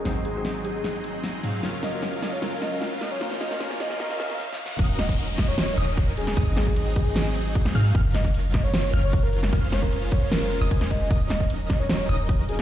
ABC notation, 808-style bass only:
X:1
M:4/4
L:1/16
Q:1/4=152
K:Gblyd
V:1 name="808-style bass" clef=bass
A,,,12- A,,,2 A,,2 | G,,,8 G,,,8 | F,,,4 F,,,4 F,,,2 F,,,2 z4 | E,,,8- E,,,2 E,,,6 |
A,,,12- A,,,2 A,,2 | G,,,8- G,,,2 G,,,6 | F,,,8- F,,,3 F,,, F,,,4 | E,,,8- E,,,2 E,,,6 |]